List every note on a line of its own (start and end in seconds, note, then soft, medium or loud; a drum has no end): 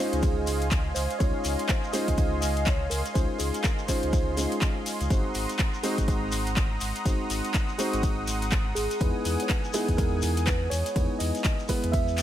0.00 1.18 G#3 loud
0.00 1.18 C#4 medium
0.00 1.18 D#4 medium
0.00 1.18 F4 medium
0.00 0.67 G#4 medium
0.00 1.18 C5 loud
0.00 5.06 D#5 medium
0.00 5.06 F5 medium
0.00 5.06 G#5 medium
0.00 8.97 C6 medium
0.13 0.47 C#2 medium
0.13 closed hi-hat medium
0.13 shekere soft
0.22 kick loud
0.22 closed hi-hat medium
0.22 ride medium
0.22 shekere medium
0.47 0.92 C#2 loud
0.47 open hi-hat loud
0.47 ride medium
0.47 shekere medium
0.61 closed hi-hat medium
0.61 shekere soft
0.71 kick loud
0.71 clap loud
0.71 closed hi-hat medium
0.71 ride medium
0.71 shekere medium
0.94 1.07 C#2 loud
0.94 1.20 C5 loud
0.94 open hi-hat loud
0.94 ride medium
0.94 shekere loud
1.10 closed hi-hat medium
1.10 shekere soft
1.19 1.32 C#2 loud
1.19 1.91 G#3 medium
1.19 1.91 C#4 medium
1.19 1.91 D#4 medium
1.19 1.91 F4 medium
1.19 1.65 C#5 loud
1.19 1.91 C#5 medium
1.19 kick loud
1.19 closed hi-hat medium
1.19 ride medium
1.19 shekere medium
1.44 1.56 C#2 medium
1.44 open hi-hat loud
1.44 ride medium
1.44 shekere medium
1.59 closed hi-hat medium
1.59 shekere soft
1.68 1.93 C5 loud
1.68 kick loud
1.68 clap loud
1.68 closed hi-hat medium
1.68 ride medium
1.68 shekere medium
1.84 shekere soft
1.92 3.13 G#3 loud
1.92 3.13 C#4 loud
1.92 3.13 D#4 medium
1.92 3.13 F4 medium
1.92 3.13 C5 loud
1.92 2.40 D#5 loud
1.92 open hi-hat loud
1.92 ride medium
1.92 shekere medium
2.08 2.42 C#2 medium
2.08 kick medium
2.08 closed hi-hat medium
2.08 shekere soft
2.18 kick loud
2.18 closed hi-hat medium
2.18 ride medium
2.18 shekere medium
2.41 2.88 C#2 loud
2.41 2.67 D#5 loud
2.41 open hi-hat loud
2.41 ride medium
2.41 shekere loud
2.56 closed hi-hat medium
2.56 shekere soft
2.65 2.89 C#5 loud
2.65 kick loud
2.65 clap loud
2.65 closed hi-hat medium
2.65 ride medium
2.65 shekere medium
2.90 3.02 C#2 loud
2.90 3.01 A#4 loud
2.90 open hi-hat loud
2.90 ride medium
2.90 shekere loud
3.05 closed hi-hat medium
3.05 shekere soft
3.14 3.27 C#2 loud
3.14 3.86 G#3 medium
3.14 3.86 C#4 medium
3.14 3.86 D#4 medium
3.14 3.86 F4 medium
3.14 3.40 C5 loud
3.14 3.86 C5 medium
3.14 kick loud
3.14 closed hi-hat medium
3.14 ride medium
3.14 shekere medium
3.39 3.51 C#2 medium
3.39 3.64 G#4 medium
3.39 open hi-hat loud
3.39 ride medium
3.39 shekere loud
3.54 closed hi-hat medium
3.54 shekere soft
3.63 3.86 A#4 medium
3.63 kick loud
3.63 clap loud
3.63 closed hi-hat medium
3.63 ride medium
3.63 shekere medium
3.78 shekere soft
3.87 4.35 G#3 loud
3.87 4.35 C#4 loud
3.87 4.35 D#4 medium
3.87 4.35 F4 loud
3.87 4.33 C5 medium
3.87 4.35 C5 loud
3.87 kick medium
3.87 open hi-hat loud
3.87 ride medium
3.87 shekere loud
4.03 4.47 C#2 medium
4.03 closed hi-hat medium
4.03 shekere soft
4.13 kick loud
4.13 closed hi-hat soft
4.13 ride medium
4.13 shekere medium
4.37 5.08 G#3 medium
4.37 5.08 C#4 medium
4.37 5.08 D#4 medium
4.37 5.08 F4 medium
4.37 5.08 C5 medium
4.37 open hi-hat loud
4.37 ride medium
4.37 shekere loud
4.52 closed hi-hat medium
4.52 shekere soft
4.61 kick loud
4.61 clap loud
4.61 closed hi-hat soft
4.61 ride medium
4.61 shekere medium
4.86 open hi-hat loud
4.86 ride medium
4.86 shekere loud
5.01 5.08 C#2 loud
5.01 closed hi-hat medium
5.01 shekere soft
5.10 5.22 G#1 loud
5.10 5.81 G#3 medium
5.10 5.81 C4 medium
5.10 5.81 D#4 medium
5.10 5.81 F#4 medium
5.10 5.81 C5 medium
5.10 12.22 F#5 medium
5.10 8.97 A#5 medium
5.10 12.22 D#6 medium
5.10 kick loud
5.10 closed hi-hat medium
5.10 ride medium
5.10 shekere medium
5.34 5.46 G#1 medium
5.34 open hi-hat loud
5.34 ride medium
5.34 shekere medium
5.49 closed hi-hat medium
5.49 shekere soft
5.59 kick loud
5.59 clap loud
5.59 closed hi-hat medium
5.59 ride medium
5.59 shekere soft
5.74 shekere soft
5.83 7.03 G#3 loud
5.83 7.03 C4 medium
5.83 7.03 D#4 medium
5.83 7.03 F#4 medium
5.83 7.03 C5 loud
5.83 open hi-hat loud
5.83 ride medium
5.83 shekere medium
5.98 6.32 G#1 medium
5.98 kick medium
5.98 closed hi-hat medium
5.98 shekere soft
6.08 kick loud
6.08 closed hi-hat soft
6.08 ride medium
6.08 shekere medium
6.32 6.78 G#1 loud
6.32 open hi-hat loud
6.32 ride medium
6.32 shekere loud
6.47 closed hi-hat medium
6.47 shekere soft
6.57 kick loud
6.57 clap loud
6.57 closed hi-hat soft
6.57 ride medium
6.57 shekere medium
6.80 6.93 G#1 loud
6.80 open hi-hat loud
6.80 ride medium
6.80 shekere medium
6.95 closed hi-hat medium
6.95 shekere soft
7.05 7.17 G#1 loud
7.05 7.76 G#3 medium
7.05 7.76 C4 medium
7.05 7.76 D#4 medium
7.05 7.76 F#4 medium
7.05 7.76 C5 medium
7.05 kick loud
7.05 closed hi-hat medium
7.05 ride medium
7.05 shekere soft
7.30 7.41 G#1 medium
7.30 open hi-hat loud
7.30 ride medium
7.30 shekere medium
7.45 closed hi-hat medium
7.45 shekere soft
7.54 kick loud
7.54 clap loud
7.54 closed hi-hat medium
7.54 ride medium
7.54 shekere medium
7.69 shekere soft
7.78 8.98 G#3 loud
7.78 8.98 C4 medium
7.78 8.98 D#4 loud
7.78 8.98 F#4 medium
7.78 8.98 C5 loud
7.78 open hi-hat loud
7.78 ride medium
7.78 shekere loud
7.93 8.27 G#1 medium
7.93 closed hi-hat medium
7.93 shekere soft
8.03 kick loud
8.03 closed hi-hat medium
8.03 ride medium
8.03 shekere medium
8.27 8.73 G#1 loud
8.27 open hi-hat loud
8.27 ride medium
8.27 shekere medium
8.42 closed hi-hat medium
8.42 shekere soft
8.51 kick loud
8.51 clap loud
8.51 closed hi-hat medium
8.51 ride medium
8.51 shekere medium
8.75 8.88 G#1 loud
8.75 9.45 G#4 medium
8.75 open hi-hat loud
8.75 ride medium
8.75 shekere loud
8.91 closed hi-hat medium
8.91 shekere soft
9.00 9.12 E2 loud
9.00 9.71 G#3 medium
9.00 9.71 B3 medium
9.00 9.72 D#4 medium
9.00 9.72 E4 medium
9.00 9.72 B4 medium
9.00 12.22 G#5 medium
9.00 kick loud
9.00 closed hi-hat medium
9.00 ride medium
9.00 shekere medium
9.25 9.36 E2 medium
9.25 open hi-hat loud
9.25 ride medium
9.25 shekere medium
9.39 9.49 C#5 medium
9.39 closed hi-hat medium
9.39 shekere soft
9.48 9.99 B4 medium
9.48 kick loud
9.48 clap loud
9.48 closed hi-hat medium
9.48 ride medium
9.48 shekere medium
9.64 shekere soft
9.73 10.93 G#3 loud
9.73 10.93 B3 medium
9.73 10.93 D#4 medium
9.73 10.94 E4 medium
9.73 10.94 G#4 loud
9.73 open hi-hat loud
9.73 ride medium
9.73 shekere loud
9.88 10.22 E2 medium
9.88 kick medium
9.88 closed hi-hat medium
9.88 shekere soft
9.97 10.43 A#4 loud
9.97 kick loud
9.97 closed hi-hat medium
9.97 ride medium
9.97 shekere soft
10.22 10.68 E2 loud
10.22 open hi-hat loud
10.22 ride medium
10.22 shekere medium
10.37 closed hi-hat medium
10.37 shekere soft
10.46 10.72 B4 loud
10.46 kick loud
10.46 clap loud
10.46 closed hi-hat medium
10.46 ride medium
10.46 shekere medium
10.70 10.83 E2 loud
10.70 11.16 C#5 loud
10.70 open hi-hat loud
10.70 ride medium
10.70 shekere medium
10.86 closed hi-hat medium
10.86 shekere soft
10.95 11.07 E2 loud
10.95 11.66 G#3 medium
10.95 11.66 B3 medium
10.95 11.67 D#4 medium
10.95 11.67 E4 medium
10.95 11.67 B4 medium
10.95 kick loud
10.95 closed hi-hat medium
10.95 ride medium
10.95 shekere soft
11.19 11.32 E2 medium
11.19 11.65 D#5 loud
11.19 open hi-hat loud
11.19 ride medium
11.19 shekere medium
11.35 closed hi-hat medium
11.35 shekere soft
11.44 kick loud
11.44 clap loud
11.44 closed hi-hat medium
11.44 ride medium
11.44 shekere soft
11.59 shekere soft
11.68 12.22 G#3 loud
11.68 12.22 B3 loud
11.68 12.22 E4 medium
11.68 12.22 B4 loud
11.68 kick medium
11.68 open hi-hat loud
11.68 ride medium
11.68 shekere medium
11.83 12.22 E2 medium
11.83 closed hi-hat medium
11.83 shekere soft
11.92 12.22 E5 loud
11.92 kick loud
11.92 closed hi-hat medium
11.92 ride medium
11.92 shekere soft
12.08 shekere soft
12.18 clap medium
12.18 open hi-hat loud
12.18 ride medium
12.18 shekere medium